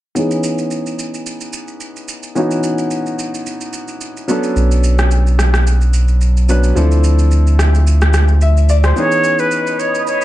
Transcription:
0.15 E3 B3 C#4 D#4 G#4, shaker
0.31 shaker
0.43 shaker
0.58 shaker
0.71 shaker
0.86 shaker
0.99 shaker
1.14 shaker
1.26 shaker
1.41 shaker
1.53 shaker
1.68 shaker
1.81 shaker
1.96 shaker
2.08 shaker
2.23 shaker
2.35 E3 B3 C#4 D#4 F#4, shaker
2.51 shaker
2.63 shaker
2.78 shaker
2.91 shaker
3.06 shaker
3.19 shaker
3.34 shaker
3.46 shaker
3.61 shaker
3.73 shaker
3.88 shaker
4.01 shaker
4.17 shaker
4.28 F#3 B3 C#4 D4 A4, shaker
4.43 shaker
4.56 B1, shaker
4.71 shaker
4.84 shaker
4.99 cross-stick, shaker
5.11 shaker
5.27 shaker
5.39 cross-stick, shaker
5.54 cross-stick, shaker
5.67 shaker
5.81 shaker
5.93 shaker
6.08 shaker
6.21 shaker
6.37 shaker
6.49 F#3 B3 C#4 D4 B4, shaker
6.64 shaker
6.75 D2 F3 C4 D4 E4 A4, shaker
6.92 shaker
7.04 shaker
7.19 shaker
7.31 shaker
7.47 shaker
7.59 cross-stick, shaker
7.75 shaker
7.87 shaker
8.02 cross-stick, shaker
8.14 cross-stick, shaker
8.28 shaker
8.41 E5, shaker
8.57 shaker
8.69 D5, shaker
8.84 C5, cross-stick, shaker
8.96 E3 B3 C#4 D#4 G#4 B4 C#5 D#5 B5 D#6, shaker
9.12 shaker
9.24 shaker
9.39 B4, shaker
9.51 shaker
9.67 shaker
9.79 C#5, shaker
9.95 shaker
10.07 C#5, shaker
10.21 shaker

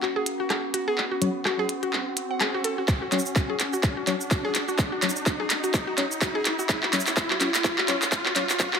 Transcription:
Already playing: C#4 F#4 F#5 C#6, riser
0.02 F#4, clap
0.16 G#4
0.26 closed hi-hat
0.40 F#4
0.50 cross-stick, clap, closed hi-hat
0.74 F#4, closed hi-hat
0.88 G#4
0.98 clap
1.11 F#4
1.21 F#3 C#4 C#5, closed hi-hat
1.45 F#4, cross-stick, clap
1.59 G#4
1.69 closed hi-hat
1.83 F#4, closed hi-hat
1.93 clap
2.17 closed hi-hat
2.31 F#5
2.41 G#4, cross-stick, clap, closed hi-hat
2.54 F#4
2.64 A4, closed hi-hat
2.78 F#4
2.88 kick, clap, cabasa
3.02 F#4
3.12 F#3 C#4 C#5, clap, closed hi-hat, cabasa
3.19 cabasa
3.26 cabasa
3.36 F#4, kick, clap, cabasa
3.50 G#4
3.60 clap, closed hi-hat, cabasa
3.73 F#4, cabasa
3.83 kick, clap, cabasa
3.97 F#4
4.07 F#3 C#4 C#5, clap, closed hi-hat, cabasa
4.21 cabasa
4.31 F#4, kick, clap, closed hi-hat, cabasa
4.45 G#4
4.55 clap, closed hi-hat, cabasa
4.68 F#4, cabasa
4.79 kick, clap, cabasa
4.92 F#4
5.02 F#3 C#4 C#5, clap, closed hi-hat, cabasa
5.09 cabasa
5.16 cabasa
5.26 F#4, kick, clap, cabasa
5.40 G#4
5.50 clap, closed hi-hat, cabasa
5.64 F#4, closed hi-hat, cabasa
5.74 kick, clap, cabasa
5.87 F#4
5.98 F#3 C#4 C#5, clap, closed hi-hat, cabasa
6.12 cabasa
6.21 F#4, kick, clap, closed hi-hat, cabasa
6.35 G#4
6.45 clap, closed hi-hat, cabasa
6.59 F#4, cabasa
6.69 kick, clap, cabasa
6.83 F#4, clap
6.93 F#3 C#4 C#5, clap, closed hi-hat, cabasa
7.00 cabasa
7.07 clap, cabasa
7.17 kick, clap, cabasa
7.30 F#4, clap
7.40 F#3 C#4 C#5, clap, closed hi-hat, cabasa
7.54 clap, cabasa
7.64 kick, clap, cabasa
7.78 F#4, clap
7.88 F#3 C#4 C#5, clap, closed hi-hat, cabasa
8.02 clap, cabasa
8.12 kick, clap, closed hi-hat, cabasa
8.26 F#4, clap
8.36 F#3 C#4 C#5, clap, closed hi-hat, cabasa
8.49 clap, cabasa
8.60 F#3 C#4 C#5, kick, clap, cabasa
8.73 F#4, clap

